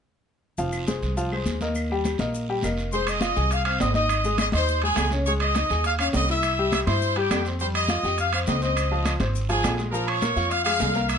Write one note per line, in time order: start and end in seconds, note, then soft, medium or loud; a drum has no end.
0.58 0.99 F1 medium
0.58 0.82 F3 medium
0.58 0.82 F4 medium
0.58 0.83 F5 medium
0.58 high conga soft
0.58 long guiro medium
0.58 maracas medium
0.72 high conga soft
0.72 claves medium
0.72 maracas medium
0.87 1.11 G#3 medium
0.87 1.12 G#4 medium
0.87 1.12 C5 medium
0.87 high conga medium
0.87 short guiro medium
0.87 maracas medium
1.02 1.43 C2 medium
1.02 high conga soft
1.02 short guiro medium
1.02 maracas soft
1.17 1.29 F3 medium
1.17 1.29 F4 medium
1.17 1.29 F5 medium
1.17 high conga soft
1.17 long guiro medium
1.17 maracas medium
1.31 1.56 G#3 medium
1.31 1.56 G#4 medium
1.31 1.57 C5 medium
1.31 high conga soft
1.31 claves medium
1.46 2.14 D#2 medium
1.46 high conga medium
1.46 short guiro medium
1.46 maracas medium
1.61 1.85 A#3 medium
1.61 1.85 A#4 medium
1.61 1.86 D#5 medium
1.61 high conga medium
1.61 short guiro medium
1.61 maracas soft
1.75 high conga soft
1.75 long guiro medium
1.75 claves medium
1.75 maracas medium
1.90 2.15 G3 medium
1.90 2.15 G4 medium
1.90 2.15 G5 medium
1.90 high conga soft
2.04 high conga medium
2.04 short guiro medium
2.04 claves medium
2.04 maracas medium
2.18 2.60 A#1 medium
2.18 2.44 A#3 medium
2.18 2.44 A#4 medium
2.18 2.44 D#5 medium
2.18 high conga loud
2.18 short guiro medium
2.18 maracas soft
2.33 high conga soft
2.33 long guiro medium
2.33 maracas medium
2.49 2.61 G3 medium
2.49 2.61 G4 medium
2.49 2.61 G5 medium
2.49 high conga soft
2.62 3.31 F1 medium
2.62 2.88 A#3 medium
2.62 2.88 A#4 medium
2.62 2.88 D#5 medium
2.62 high conga medium
2.62 short guiro medium
2.62 claves medium
2.62 maracas medium
2.77 short guiro medium
2.77 maracas soft
2.91 3.17 G#3 medium
2.91 3.17 G#4 medium
2.91 3.07 C5 medium
2.91 3.06 C6 medium
2.91 high conga soft
2.91 long guiro medium
2.91 maracas medium
3.07 3.52 D#5 loud
3.07 3.51 D#6 medium
3.07 high conga soft
3.07 high timbale medium
3.07 claves medium
3.07 maracas medium
3.21 3.33 F4 medium
3.21 3.34 F5 medium
3.21 high conga medium
3.21 high timbale medium
3.21 low timbale medium
3.21 short guiro medium
3.21 maracas medium
3.36 3.77 C2 medium
3.36 3.60 G#4 medium
3.36 3.60 G#5 medium
3.36 high conga soft
3.36 short guiro medium
3.36 maracas soft
3.50 3.64 F5 loud
3.50 high conga soft
3.50 high timbale medium
3.50 long guiro medium
3.50 maracas medium
3.65 3.89 C4 medium
3.65 3.89 C5 medium
3.65 3.79 F5 medium
3.65 high conga soft
3.65 high timbale medium
3.65 claves medium
3.80 4.48 G#1 medium
3.80 3.94 D#5 medium
3.80 3.94 D#6 medium
3.80 high conga medium
3.80 low timbale medium
3.80 short guiro medium
3.80 maracas medium
3.94 4.19 D#4 medium
3.94 4.36 D#5 loud
3.94 4.19 D#5 medium
3.94 4.36 D#6 medium
3.94 high conga medium
3.94 short guiro medium
3.94 maracas soft
4.09 high conga soft
4.09 high timbale medium
4.09 long guiro medium
4.09 claves medium
4.09 maracas medium
4.24 4.48 G#3 medium
4.24 4.49 G#4 medium
4.24 high conga soft
4.24 maracas medium
4.38 4.46 D#5 loud
4.38 4.46 D#6 medium
4.38 high conga medium
4.38 high timbale medium
4.38 low timbale medium
4.38 short guiro medium
4.38 claves medium
4.38 maracas medium
4.52 4.94 D#2 medium
4.52 4.77 D#4 medium
4.52 4.81 C5 loud
4.52 4.77 D#5 medium
4.52 4.81 C6 medium
4.52 high conga medium
4.52 high timbale medium
4.52 short guiro medium
4.52 maracas soft
4.67 high conga soft
4.67 long guiro medium
4.67 maracas medium
4.82 5.07 G#3 medium
4.82 5.07 G#4 medium
4.82 5.10 G#4 loud
4.82 5.10 G#5 medium
4.82 high conga soft
4.82 high timbale medium
4.96 5.65 C#2 medium
4.96 high conga medium
4.96 high timbale medium
4.96 low timbale medium
4.96 short guiro medium
4.96 claves medium
4.96 maracas medium
5.11 5.24 C#4 medium
5.11 5.24 C#5 medium
5.11 high conga medium
5.11 short guiro medium
5.11 maracas soft
5.25 5.51 G#3 medium
5.25 5.51 G#4 medium
5.25 5.33 C#5 medium
5.25 5.33 C#6 medium
5.25 high conga soft
5.25 long guiro medium
5.25 maracas medium
5.40 5.82 D#5 medium
5.40 5.82 D#6 medium
5.40 high conga soft
5.40 high timbale medium
5.40 claves medium
5.54 5.68 D#4 medium
5.54 5.68 D#5 medium
5.54 high conga medium
5.54 high timbale medium
5.54 low timbale medium
5.54 short guiro medium
5.54 maracas medium
5.69 6.11 D#2 medium
5.69 5.94 G#4 medium
5.69 5.94 G#5 medium
5.69 high conga soft
5.69 short guiro medium
5.69 maracas soft
5.84 5.92 F5 loud
5.84 high conga soft
5.84 high timbale medium
5.84 long guiro medium
5.84 maracas medium
5.99 6.23 C#4 medium
5.99 6.23 C#5 medium
5.99 6.07 F5 medium
5.99 high conga soft
5.99 high timbale medium
5.99 claves medium
6.13 6.82 C2 medium
6.13 6.28 D#5 medium
6.13 6.29 D#6 medium
6.13 high conga medium
6.13 low timbale medium
6.13 short guiro medium
6.13 maracas medium
6.28 6.53 E4 medium
6.28 6.53 E5 medium
6.28 6.70 E5 medium
6.28 6.71 E6 medium
6.28 short guiro medium
6.28 maracas soft
6.43 high conga soft
6.43 high timbale medium
6.43 long guiro medium
6.43 claves medium
6.43 maracas medium
6.58 6.82 G3 medium
6.58 6.82 G4 medium
6.58 high conga soft
6.72 6.80 E5 loud
6.72 6.80 E6 medium
6.72 high conga medium
6.72 high timbale medium
6.72 low timbale medium
6.72 short guiro medium
6.72 claves medium
6.72 maracas medium
6.87 7.28 G2 medium
6.87 7.11 E4 medium
6.87 7.14 C5 medium
6.87 7.11 E5 medium
6.87 7.14 C6 medium
6.87 high conga medium
6.87 high timbale medium
6.87 short guiro medium
6.87 maracas soft
7.01 high conga soft
7.01 long guiro medium
7.01 maracas medium
7.16 7.41 G3 medium
7.16 7.45 G4 medium
7.16 7.41 G4 medium
7.16 7.46 G5 medium
7.16 high conga soft
7.16 high timbale medium
7.31 7.98 F2 medium
7.31 high conga medium
7.31 high timbale medium
7.31 low timbale medium
7.31 short guiro medium
7.31 claves medium
7.31 maracas medium
7.45 7.58 C4 medium
7.45 7.58 C5 medium
7.45 short guiro medium
7.45 maracas soft
7.59 7.84 G3 medium
7.59 7.84 G4 medium
7.59 7.67 C5 medium
7.59 7.67 C6 medium
7.59 high conga soft
7.59 long guiro medium
7.59 maracas medium
7.74 8.15 D#5 medium
7.74 8.16 D#6 medium
7.74 high conga soft
7.74 high timbale medium
7.74 claves medium
7.88 8.01 F4 medium
7.88 8.01 F5 medium
7.88 high conga medium
7.88 high timbale medium
7.88 low timbale medium
7.88 short guiro medium
7.88 maracas medium
8.03 8.44 F2 medium
8.03 8.28 G4 medium
8.03 8.28 G5 medium
8.03 high conga soft
8.03 short guiro medium
8.03 maracas soft
8.18 8.33 F5 medium
8.18 high conga soft
8.18 high timbale medium
8.18 long guiro medium
8.18 maracas medium
8.32 8.57 C4 medium
8.32 8.57 C5 medium
8.32 8.40 F5 medium
8.32 high conga soft
8.32 high timbale medium
8.32 claves medium
8.47 9.15 C#2 medium
8.47 8.61 D#5 medium
8.47 8.62 D#6 medium
8.47 high conga medium
8.47 low timbale medium
8.47 short guiro medium
8.47 maracas medium
8.62 8.86 C4 medium
8.62 8.86 C5 medium
8.62 9.03 D#5 medium
8.62 9.03 D#6 medium
8.62 short guiro medium
8.62 maracas soft
8.76 high conga soft
8.76 high timbale medium
8.76 long guiro medium
8.76 claves medium
8.76 maracas medium
8.91 9.15 F3 medium
8.91 9.15 F4 medium
8.91 high conga soft
9.05 9.13 D#5 medium
9.05 9.13 D#6 medium
9.05 high conga medium
9.05 high timbale medium
9.05 low timbale medium
9.05 short guiro medium
9.05 claves medium
9.05 maracas medium
9.20 9.61 G#1 medium
9.20 9.44 C4 medium
9.20 9.44 C5 medium
9.20 high conga medium
9.20 high timbale medium
9.20 short guiro medium
9.20 maracas soft
9.33 high conga soft
9.33 long guiro medium
9.33 maracas medium
9.49 9.73 F3 medium
9.49 9.73 F4 medium
9.49 9.76 G#4 medium
9.49 9.77 G#5 medium
9.49 high conga soft
9.49 high timbale medium
9.49 maracas medium
9.63 10.31 A#1 medium
9.63 high conga medium
9.63 high timbale medium
9.63 low timbale medium
9.63 short guiro medium
9.63 claves medium
9.63 maracas medium
9.77 9.91 G#3 medium
9.77 9.91 G#4 medium
9.77 short guiro medium
9.77 maracas soft
9.91 10.17 F3 medium
9.91 10.17 F4 medium
9.91 10.05 A#4 medium
9.91 10.07 A#5 medium
9.91 high conga soft
9.91 long guiro medium
9.91 maracas medium
10.06 10.50 C#5 loud
10.06 10.51 C#6 medium
10.06 high conga soft
10.06 high timbale medium
10.06 claves medium
10.22 10.34 A#3 medium
10.22 10.34 A#4 medium
10.22 high conga medium
10.22 high timbale medium
10.22 low timbale medium
10.22 short guiro medium
10.22 maracas medium
10.36 10.77 F2 medium
10.36 10.60 F4 medium
10.36 10.61 F5 medium
10.36 high conga soft
10.36 short guiro medium
10.36 maracas soft
10.49 10.53 F5 loud
10.49 10.63 F5 medium
10.49 high conga soft
10.49 high timbale medium
10.49 long guiro medium
10.49 maracas medium
10.63 10.89 G#3 medium
10.63 10.90 G#4 medium
10.63 10.66 F5 loud
10.63 11.06 F5 medium
10.63 high conga soft
10.63 high timbale loud
10.63 claves medium
10.79 11.18 C2 medium
10.79 high conga medium
10.79 low timbale medium
10.79 short guiro medium
10.79 maracas medium
10.94 11.18 A#3 medium
10.94 11.18 A#4 medium
10.94 short guiro medium
10.94 maracas soft
11.08 11.18 E5 medium
11.08 11.18 E6 medium
11.08 high conga soft
11.08 high timbale medium
11.08 long guiro medium
11.08 claves medium
11.08 maracas medium